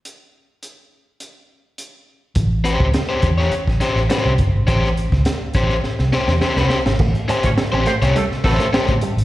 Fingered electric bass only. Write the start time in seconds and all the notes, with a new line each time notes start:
2.36 A1
2.80 C#2
3.23 E2
3.52 muted fingered electric bass stroke
3.67 A1
3.96 A1
4.25 C2
4.39 G1
4.54 G#1
4.68 A1
5.12 C#2
5.55 A1
5.84 muted fingered electric bass stroke
5.99 C2
6.28 E2
6.41 muted fingered electric bass stroke
6.56 C2
6.86 G#1
7.00 A1
7.30 muted fingered electric bass stroke
7.44 A2
7.73 A1
8.02 C2
8.31 muted fingered electric bass stroke
8.44 A1
8.88 A2
9.17 G#1